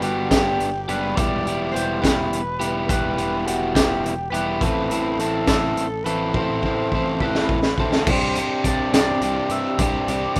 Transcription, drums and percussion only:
0.02 closed hi-hat
0.31 kick, snare, closed hi-hat
0.60 closed hi-hat
0.89 closed hi-hat
1.17 kick, closed hi-hat
1.47 closed hi-hat
1.76 closed hi-hat
2.04 kick, snare, closed hi-hat
2.33 closed hi-hat
2.61 closed hi-hat
2.89 kick, closed hi-hat
3.18 closed hi-hat
3.47 closed hi-hat
3.75 kick, snare, closed hi-hat
4.06 closed hi-hat
4.34 closed hi-hat
4.61 kick, closed hi-hat
4.91 closed hi-hat
5.19 closed hi-hat
5.47 kick, snare, closed hi-hat
5.77 closed hi-hat
6.06 closed hi-hat
6.34 kick
6.63 kick
6.92 kick
7.20 kick
7.35 snare
7.49 kick
7.62 snare
7.78 kick
7.92 snare
8.07 kick, crash
8.35 closed hi-hat
8.64 kick, closed hi-hat
8.94 snare, closed hi-hat
9.22 closed hi-hat
9.50 closed hi-hat
9.79 kick, closed hi-hat
10.08 closed hi-hat
10.36 kick, closed hi-hat

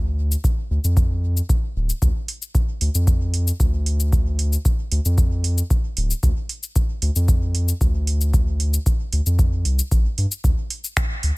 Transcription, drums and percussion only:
0.31 cabasa
0.44 kick, cabasa
0.84 cabasa
0.97 kick, cabasa
1.37 cabasa
1.49 kick, cabasa
1.89 cabasa
2.02 kick, cabasa
2.28 open hi-hat
2.42 cabasa
2.55 kick, cabasa
2.81 open hi-hat
2.95 cabasa
3.07 kick, cabasa
3.34 open hi-hat
3.47 cabasa
3.60 kick, cabasa
3.86 open hi-hat
4.00 cabasa
4.13 kick, cabasa
4.39 open hi-hat
4.53 cabasa
4.65 kick, cabasa
4.92 open hi-hat
5.05 cabasa
5.18 kick, cabasa
5.44 open hi-hat
5.58 cabasa
5.70 kick, cabasa
5.97 open hi-hat
6.10 cabasa
6.23 kick, cabasa
6.49 open hi-hat
6.63 cabasa
6.76 kick, cabasa
7.02 open hi-hat
7.16 cabasa
7.28 kick, cabasa
7.55 open hi-hat
7.68 cabasa
7.81 kick, cabasa
8.07 open hi-hat
8.21 cabasa
8.34 kick, cabasa
8.60 open hi-hat
8.74 cabasa
8.86 kick, cabasa
9.13 open hi-hat
9.26 cabasa
9.39 kick, cabasa
9.65 open hi-hat
9.79 cabasa
9.91 kick, cabasa
10.18 open hi-hat
10.31 cabasa
10.44 kick, cabasa
10.70 open hi-hat
10.84 cabasa
10.97 finger snap, kick, cabasa
11.23 open hi-hat

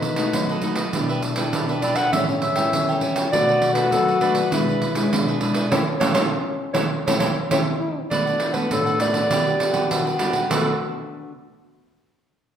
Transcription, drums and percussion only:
0.02 pandeiro
0.16 pandeiro
0.33 pandeiro
0.49 pandeiro
0.62 pandeiro
0.76 pandeiro
0.93 pandeiro
1.10 pandeiro
1.22 pandeiro
1.36 pandeiro
1.53 pandeiro
1.69 pandeiro
1.82 pandeiro
1.96 pandeiro
2.13 pandeiro
2.29 pandeiro
2.42 pandeiro
2.56 pandeiro
2.73 pandeiro
2.89 pandeiro
3.01 pandeiro
3.16 pandeiro
3.33 pandeiro
3.49 pandeiro
3.62 pandeiro
3.75 pandeiro
3.92 pandeiro
4.08 pandeiro
4.21 pandeiro
4.35 pandeiro
4.52 pandeiro
4.69 pandeiro
4.82 pandeiro
4.95 pandeiro
5.13 pandeiro
5.28 pandeiro
5.41 pandeiro
5.54 pandeiro
5.72 pandeiro
6.01 pandeiro
6.15 pandeiro
6.75 pandeiro
7.08 pandeiro
7.20 pandeiro
7.51 pandeiro
8.11 pandeiro
8.27 pandeiro
8.40 pandeiro
8.54 pandeiro
8.71 pandeiro
8.87 pandeiro
9.00 pandeiro
9.14 pandeiro
9.31 pandeiro
9.47 pandeiro
9.60 pandeiro
9.74 pandeiro
9.91 pandeiro
10.07 pandeiro
10.19 pandeiro
10.33 pandeiro
10.51 pandeiro

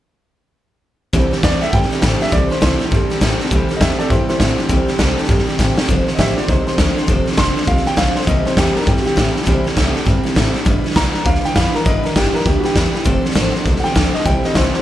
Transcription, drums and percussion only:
1.13 kick, snare
1.32 snare
1.43 kick, snare, hi-hat pedal
1.62 snare
1.73 kick, snare
1.83 snare
1.92 snare
2.02 kick, snare, hi-hat pedal
2.21 snare
2.27 snare
2.32 kick, snare
2.51 snare
2.62 kick, snare, hi-hat pedal
2.81 snare
2.92 kick, snare
3.10 snare
3.21 kick, snare, hi-hat pedal
3.40 snare
3.46 snare
3.51 kick, snare
3.70 snare
3.81 kick, snare, hi-hat pedal
4.00 snare
4.10 kick, snare
4.29 snare
4.40 kick, snare, hi-hat pedal
4.58 snare
4.69 kick, snare
4.88 snare
4.99 kick, snare, hi-hat pedal
5.18 snare
5.24 snare
5.29 kick, snare
5.38 snare
5.48 snare
5.59 kick, snare, hi-hat pedal
5.78 snare
5.89 kick, snare
6.07 snare
6.19 kick, snare, hi-hat pedal
6.37 snare
6.49 kick, snare
6.67 snare
6.78 kick, snare, hi-hat pedal
6.97 snare
7.08 kick, snare
7.27 snare
7.32 snare
7.38 kick, snare, hi-hat pedal
7.57 snare
7.62 snare
7.67 kick, snare
7.77 snare
7.86 snare
7.97 kick, snare, hi-hat pedal
8.15 snare
8.22 snare
8.27 kick, snare
8.46 snare
8.57 kick, snare, hi-hat pedal
8.76 snare
8.82 snare
8.87 kick, snare
8.97 snare
9.06 snare
9.17 kick, snare, hi-hat pedal
9.37 snare
9.42 snare
9.47 kick, snare
9.66 snare
9.77 kick, snare, hi-hat pedal
9.96 snare
10.07 kick, snare
10.25 snare
10.36 kick, snare, hi-hat pedal
10.55 snare
10.66 kick, snare
10.85 snare
10.91 snare
10.96 kick, snare, hi-hat pedal
11.14 snare
11.25 kick, snare
11.35 snare
11.44 snare
11.56 kick, snare, hi-hat pedal
11.75 snare
11.86 kick, snare
12.05 snare
12.16 kick, snare, hi-hat pedal
12.35 snare
12.41 snare
12.46 kick, snare
12.65 snare
12.76 kick, snare, hi-hat pedal
12.95 snare
13.06 kick, snare
13.25 snare
13.30 snare
13.36 kick, snare, hi-hat pedal
13.55 snare
13.66 kick, snare
13.76 snare
13.85 snare
13.96 kick, snare, hi-hat pedal
14.15 snare
14.20 snare
14.26 kick, snare
14.44 snare
14.55 kick, snare, hi-hat pedal
14.74 snare

